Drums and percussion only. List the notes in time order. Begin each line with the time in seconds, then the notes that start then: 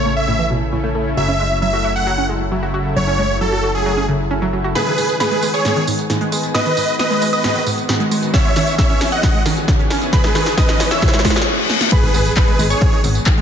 4.75 snare, closed hi-hat, tambourine
4.87 closed hi-hat
4.98 open hi-hat, tambourine
5.09 tambourine
5.20 snare, closed hi-hat, tambourine
5.31 closed hi-hat
5.43 open hi-hat, tambourine
5.54 closed hi-hat, tambourine
5.65 snare, closed hi-hat, tambourine
5.76 closed hi-hat
5.87 open hi-hat, tambourine
5.99 closed hi-hat, tambourine
6.10 snare, closed hi-hat, tambourine
6.21 closed hi-hat
6.32 open hi-hat, tambourine
6.43 closed hi-hat, tambourine
6.55 snare, closed hi-hat, tambourine
6.66 closed hi-hat
6.77 open hi-hat, tambourine
6.88 closed hi-hat, tambourine
6.99 snare, closed hi-hat, tambourine
7.11 closed hi-hat
7.22 open hi-hat, tambourine
7.33 closed hi-hat, tambourine
7.44 snare, closed hi-hat, tambourine
7.55 closed hi-hat
7.67 open hi-hat, tambourine
7.78 closed hi-hat, tambourine
7.89 snare, closed hi-hat, tambourine
8.00 closed hi-hat
8.11 open hi-hat, tambourine
8.23 closed hi-hat, tambourine
8.34 kick, snare, closed hi-hat, tambourine
8.45 closed hi-hat
8.56 snare, open hi-hat, tambourine
8.67 closed hi-hat, tambourine
8.78 kick, snare, closed hi-hat, tambourine
8.90 closed hi-hat
9.01 snare, open hi-hat, tambourine
9.12 closed hi-hat, tambourine
9.23 kick, snare, closed hi-hat, tambourine
9.34 closed hi-hat
9.46 snare, open hi-hat, tambourine
9.57 closed hi-hat, tambourine
9.68 kick, snare, closed hi-hat, tambourine
9.79 closed hi-hat
9.90 snare, open hi-hat, tambourine
10.02 closed hi-hat, tambourine
10.13 kick, snare, closed hi-hat, tambourine
10.24 snare, closed hi-hat
10.35 snare, open hi-hat, tambourine
10.46 snare, closed hi-hat, tambourine
10.58 kick, snare, closed hi-hat, tambourine
10.69 snare, closed hi-hat, tambourine
10.80 snare, open hi-hat, tambourine
10.91 snare, closed hi-hat, tambourine
11.02 kick, snare, closed hi-hat, tambourine
11.08 snare
11.14 snare, closed hi-hat
11.19 snare
11.25 kick, snare, open hi-hat, tambourine
11.30 snare
11.36 snare, tambourine
11.42 snare
11.70 snare
11.81 snare
11.92 kick, closed hi-hat, crash, tambourine
12.03 closed hi-hat
12.14 open hi-hat, tambourine
12.26 closed hi-hat, tambourine
12.37 kick, clap, closed hi-hat, tambourine
12.48 closed hi-hat
12.59 open hi-hat, tambourine
12.70 closed hi-hat, tambourine
12.81 kick, closed hi-hat, tambourine
12.93 closed hi-hat
13.04 open hi-hat, tambourine
13.15 tambourine
13.26 kick, clap, closed hi-hat, tambourine
13.38 closed hi-hat